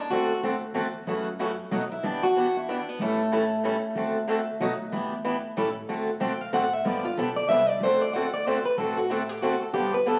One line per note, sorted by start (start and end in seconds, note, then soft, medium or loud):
0.00 0.11 D4 medium
0.10 0.36 D2 medium
0.10 0.31 D3 medium
0.10 0.31 A3 medium
0.10 0.31 C4 medium
0.10 0.40 F#4 medium
0.10 0.32 F#4 medium
0.10 0.32 A4 medium
0.43 0.70 D2 medium
0.43 0.54 D3 medium
0.43 0.54 A3 medium
0.43 0.54 C4 medium
0.43 0.54 F#4 medium
0.43 0.55 A4 medium
0.74 1.02 E2 medium
0.74 0.85 D3 medium
0.74 0.86 A3 medium
0.74 0.86 C4 medium
0.74 0.86 F#4 medium
0.74 0.86 A4 medium
1.07 1.58 F#2 medium
1.07 1.27 C#3 medium
1.07 1.27 E3 medium
1.07 1.28 A3 medium
1.07 1.28 C#4 medium
1.07 1.28 F#4 medium
1.39 1.50 C#3 medium
1.39 1.50 E3 medium
1.39 1.50 A3 medium
1.39 1.51 C#4 medium
1.39 1.51 F#4 medium
1.71 1.97 B1 medium
1.71 1.82 B2 medium
1.71 1.82 F#3 medium
1.71 1.83 A3 medium
1.71 1.83 D#4 medium
1.71 1.83 F#4 medium
1.92 2.04 E4 medium
2.03 2.80 E2 medium
2.03 2.23 E3 medium
2.03 2.24 B3 medium
2.03 2.24 D4 medium
2.03 2.24 D4 loud
2.03 2.24 G4 medium
2.23 2.56 F#4 loud
2.36 2.47 E3 medium
2.36 2.47 B3 medium
2.36 2.47 D4 medium
2.36 2.47 G4 medium
2.57 2.70 E4 medium
2.69 2.79 E3 medium
2.69 2.79 B3 medium
2.69 2.79 D4 medium
2.69 2.89 D4 medium
2.69 2.80 G4 medium
2.89 3.01 B3 medium
2.99 3.76 A1 medium
2.99 3.20 E3 medium
2.99 3.21 G3 medium
2.99 5.54 A3 medium
2.99 3.21 C#4 medium
2.99 3.21 E4 medium
2.99 3.21 A4 medium
3.32 3.43 E3 medium
3.32 3.43 G3 medium
3.32 3.43 C#4 medium
3.32 3.43 E4 medium
3.32 3.43 A4 loud
3.64 3.75 E3 medium
3.64 3.75 G3 medium
3.64 3.75 C#4 loud
3.64 3.75 E4 medium
3.64 3.76 A4 medium
3.95 4.47 D2 medium
3.95 4.17 D3 medium
3.95 4.17 A3 medium
3.95 4.17 C4 medium
3.95 4.17 F#4 medium
3.95 4.17 A4 medium
4.28 4.39 D3 medium
4.28 4.39 A3 medium
4.28 4.39 C4 medium
4.28 4.40 F#4 medium
4.28 4.40 A4 loud
4.60 4.86 B1 medium
4.60 4.71 B2 medium
4.60 4.72 F#3 medium
4.60 4.71 A3 medium
4.60 4.72 D#4 medium
4.60 4.72 F#4 medium
4.92 5.44 E2 medium
4.92 5.13 E3 medium
4.92 5.13 B3 medium
4.92 5.13 D4 medium
4.92 5.13 G4 medium
5.24 5.35 E3 medium
5.24 5.36 B3 medium
5.24 5.36 D4 medium
5.24 5.36 G4 medium
5.57 5.83 A1 medium
5.57 5.68 E3 medium
5.57 5.68 G3 medium
5.57 5.68 C#4 medium
5.57 5.68 E4 medium
5.57 5.68 A4 loud
5.89 6.15 D2 medium
5.89 6.09 D3 medium
5.89 6.09 A3 medium
5.89 6.09 C4 medium
5.89 6.09 F#4 medium
5.89 6.10 A4 medium
6.20 6.48 B1 medium
6.20 6.31 D3 medium
6.20 6.32 A3 medium
6.20 6.32 C4 medium
6.20 6.32 F#4 medium
6.20 6.32 A4 medium
6.20 6.41 G5 medium
6.41 6.53 F5 medium
6.53 6.81 A1 medium
6.53 6.64 D3 medium
6.53 6.64 A3 medium
6.53 6.64 C4 medium
6.53 6.64 F#4 medium
6.53 6.64 A4 medium
6.53 6.73 F#5 medium
6.73 6.85 E5 medium
6.85 7.11 G1 medium
6.85 7.05 D3 medium
6.85 7.05 F3 medium
6.85 7.06 B3 medium
6.85 7.05 D4 medium
6.85 7.06 G4 medium
6.85 7.05 D5 medium
7.05 7.17 F4 medium
7.17 7.44 B1 medium
7.17 7.29 D3 medium
7.17 7.29 F3 medium
7.17 7.29 B3 medium
7.17 7.29 D4 medium
7.17 7.29 G4 medium
7.17 7.36 A4 medium
7.36 7.48 D5 medium
7.49 7.77 C2 medium
7.49 7.61 D3 medium
7.49 7.61 F3 medium
7.49 7.61 B3 medium
7.49 7.61 D4 medium
7.49 7.61 G4 medium
7.49 7.69 E5 medium
7.69 7.81 D5 medium
7.80 8.58 D2 medium
7.80 8.03 D3 medium
7.80 8.03 A3 medium
7.80 8.03 C4 medium
7.80 8.03 F#4 medium
7.80 8.01 C5 medium
7.85 8.03 A4 medium
8.02 8.13 D5 medium
8.13 8.25 D3 medium
8.13 8.25 A3 medium
8.13 8.26 C4 medium
8.13 8.26 F#4 medium
8.13 8.26 A4 loud
8.13 8.33 F#5 loud
8.34 8.46 D5 medium
8.46 8.57 D3 medium
8.46 8.58 A3 medium
8.46 8.58 C4 medium
8.46 8.58 F#4 medium
8.46 8.58 A4 medium
8.46 8.65 C5 medium
8.65 8.77 B4 medium
8.77 9.55 A1 medium
8.77 8.99 D3 medium
8.77 8.99 A3 medium
8.77 8.99 C4 medium
8.77 8.99 F#4 medium
8.77 8.97 A4 medium
8.77 8.99 A4 medium
8.97 9.10 F#4 medium
9.10 9.21 D3 medium
9.10 9.21 A3 medium
9.10 9.21 C4 medium
9.10 9.29 E4 medium
9.10 9.21 F#4 medium
9.10 9.22 A4 medium
9.29 9.42 G4 medium
9.42 9.53 D3 medium
9.42 9.54 A3 medium
9.42 9.54 C4 medium
9.42 9.61 F#4 medium
9.42 9.54 F#4 medium
9.42 9.54 A4 medium
9.61 9.73 A4 medium
9.73 10.20 G1 medium
9.73 9.94 D3 medium
9.73 9.95 F3 medium
9.73 9.95 B3 medium
9.73 9.95 D4 medium
9.73 9.93 G4 medium
9.73 9.95 G4 medium
9.94 10.06 B4 loud
10.06 10.17 D3 medium
10.06 10.17 F3 medium
10.06 10.18 B3 medium
10.06 10.18 D4 medium
10.06 10.18 G4 medium
10.06 10.20 A4 medium